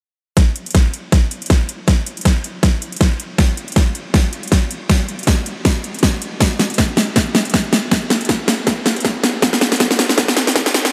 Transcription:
0.37 kick loud
0.37 snare soft
0.37 closed hi-hat medium
0.56 closed hi-hat medium
0.66 closed hi-hat medium
0.71 closed hi-hat medium
0.75 kick loud
0.75 snare soft
0.75 closed hi-hat medium
0.94 closed hi-hat medium
1.12 kick loud
1.12 snare soft
1.12 closed hi-hat medium
1.31 closed hi-hat medium
1.42 closed hi-hat medium
1.46 kick medium
1.46 closed hi-hat medium
1.50 snare soft
1.50 closed hi-hat medium
1.69 closed hi-hat medium
1.88 kick medium
1.88 snare soft
1.88 closed hi-hat medium
2.06 closed hi-hat medium
2.17 closed hi-hat soft
2.21 closed hi-hat medium
2.25 kick loud
2.25 snare medium
2.25 closed hi-hat medium
2.44 closed hi-hat medium
2.63 kick loud
2.63 snare medium
2.63 closed hi-hat medium
2.82 closed hi-hat medium
2.92 closed hi-hat soft
2.96 closed hi-hat medium
3.01 kick medium
3.01 snare medium
3.01 closed hi-hat medium
3.20 closed hi-hat medium
3.38 kick medium
3.38 snare medium
3.38 closed hi-hat medium
3.57 closed hi-hat medium
3.68 closed hi-hat soft
3.72 closed hi-hat medium
3.76 kick loud
3.76 snare medium
3.76 closed hi-hat medium
3.95 closed hi-hat medium
4.14 kick loud
4.14 snare medium
4.14 closed hi-hat medium
4.33 closed hi-hat medium
4.43 closed hi-hat soft
4.48 closed hi-hat medium
4.52 kick medium
4.52 snare medium
4.52 closed hi-hat medium
4.71 closed hi-hat medium
4.89 kick loud
4.89 snare medium
4.89 closed hi-hat medium
5.08 closed hi-hat medium
5.19 closed hi-hat soft
5.23 closed hi-hat medium
5.27 kick loud
5.27 snare medium
5.27 closed hi-hat medium
5.46 closed hi-hat medium
5.65 kick loud
5.65 snare medium
5.65 closed hi-hat medium
5.84 closed hi-hat medium
5.94 closed hi-hat soft
5.99 closed hi-hat medium
6.03 kick medium
6.03 snare medium
6.03 closed hi-hat medium
6.22 closed hi-hat medium
6.40 kick loud
6.40 snare medium
6.40 closed hi-hat medium
6.59 snare medium
6.59 closed hi-hat medium
6.70 closed hi-hat soft
6.74 closed hi-hat medium
6.78 kick loud
6.78 snare medium
6.78 closed hi-hat medium
6.97 snare medium
6.97 open hi-hat medium
7.16 kick loud
7.16 snare medium
7.16 closed hi-hat medium
7.35 snare medium
7.35 closed hi-hat medium
7.45 closed hi-hat soft
7.50 closed hi-hat medium
7.54 kick medium
7.54 snare medium
7.54 closed hi-hat medium
7.73 snare medium
7.73 closed hi-hat medium
7.91 kick loud
7.91 snare medium
7.91 closed hi-hat medium
8.10 snare medium
8.10 closed hi-hat medium
8.21 closed hi-hat medium
8.25 closed hi-hat medium
8.29 kick loud
8.29 snare medium
8.29 closed hi-hat medium
8.48 snare medium
8.48 open hi-hat loud
8.67 kick loud
8.67 snare medium
8.67 closed hi-hat medium
8.86 snare medium
8.86 closed hi-hat medium
8.96 closed hi-hat soft
9.00 closed hi-hat medium
9.05 kick medium
9.05 snare medium
9.05 closed hi-hat medium
9.24 snare medium
9.24 closed hi-hat medium
9.42 kick loud
9.42 snare medium
9.42 closed hi-hat medium
9.53 snare medium
9.61 snare medium
9.61 closed hi-hat medium
9.72 snare medium
9.72 closed hi-hat medium
9.76 closed hi-hat medium
9.80 kick loud
9.80 snare medium
9.80 closed hi-hat medium
9.91 snare medium
9.99 snare medium
9.99 open hi-hat loud
10.09 snare medium
10.18 kick loud
10.18 snare medium
10.18 closed hi-hat medium
10.28 snare medium
10.37 snare medium
10.37 closed hi-hat medium
10.47 snare medium
10.47 closed hi-hat soft
10.51 closed hi-hat medium
10.56 kick loud
10.56 snare medium
10.56 closed hi-hat medium
10.66 snare medium
10.74 snare loud
10.74 closed hi-hat medium
10.85 snare medium

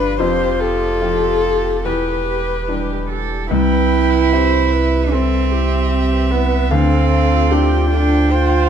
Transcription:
0.00 0.21 G1 medium
0.00 0.23 G2 medium
0.00 0.16 F3 soft
0.00 0.16 D4 soft
0.00 0.20 D4 medium
0.00 0.20 F4 medium
0.00 0.16 G4 soft
0.00 0.18 B4 medium
0.00 0.12 F5 medium
0.19 1.86 F1 medium
0.19 0.99 F2 medium
0.19 0.32 F4 medium
0.19 1.87 F4 medium
0.19 0.60 G4 medium
0.19 0.61 C5 medium
0.40 0.53 G5 medium
0.60 1.01 G4 medium
0.60 1.87 A4 medium
0.60 0.72 G5 medium
0.80 0.93 C5 medium
1.01 1.81 F3 soft
1.01 1.14 F4 medium
1.01 1.82 F4 soft
1.01 1.82 G4 soft
1.01 1.43 G4 medium
1.21 1.34 C5 medium
1.42 1.85 G4 soft
1.42 1.55 F5 soft
1.63 1.76 G5 soft
1.84 3.51 E1 medium
1.84 2.66 E2 medium
1.84 1.97 E4 medium
1.84 2.61 G4 medium
1.84 2.27 G4 soft
1.84 3.10 B4 medium
2.27 2.39 G4 soft
2.27 2.69 G4 soft
2.67 3.47 G3 soft
2.67 3.48 D4 soft
2.67 2.80 E4 medium
2.67 3.06 G4 soft
2.67 3.48 G4 soft
2.67 3.10 G4 soft
2.88 3.01 D5 soft
3.09 3.22 G4 soft
3.09 3.51 G4 soft
3.09 3.50 A4 medium
3.30 3.43 D5 soft
3.51 4.29 C2 medium
3.51 6.73 C2 medium
3.51 3.64 C4 medium
3.51 5.14 E4 loud
3.51 4.34 B4 medium
3.51 4.34 G5 medium
3.72 3.84 B4 medium
3.93 4.05 B4 medium
4.13 4.24 E4 medium
4.32 4.44 C4 medium
4.32 6.68 E4 soft
4.32 6.68 G4 soft
4.32 6.67 B4 soft
4.32 4.74 C5 medium
4.32 5.12 E5 medium
4.52 4.64 E4 medium
4.72 4.84 G4 medium
4.72 5.13 B4 medium
4.92 5.04 B4 medium
5.11 6.33 C4 medium
5.11 5.24 C4 medium
5.11 5.54 A4 medium
5.11 6.72 E5 medium
5.52 5.64 E4 medium
5.52 5.91 G4 medium
5.91 6.03 C4 medium
5.91 6.32 G4 medium
6.12 6.24 B4 soft
6.31 6.75 B3 medium
6.31 6.44 E4 medium
6.31 6.73 B4 medium
6.52 6.64 B4 medium
6.70 7.49 D2 medium
6.70 8.69 D2 medium
6.70 7.90 C4 medium
6.70 6.84 D4 medium
6.70 7.52 A4 medium
6.70 7.10 F5 medium
6.91 7.03 C5 medium
7.11 7.24 C5 medium
7.11 7.53 F5 medium
7.32 7.43 F4 medium
7.51 8.69 A3 soft
7.51 7.63 D4 medium
7.51 8.69 D4 soft
7.51 8.69 F4 soft
7.51 7.90 G4 medium
7.51 8.69 G5 medium
7.71 7.83 F4 medium
7.90 8.33 D4 medium
7.90 8.31 F4 medium
7.90 8.02 A4 medium
8.11 8.22 C5 medium
8.30 8.42 D4 medium
8.30 8.69 F4 loud
8.30 8.69 C5 medium

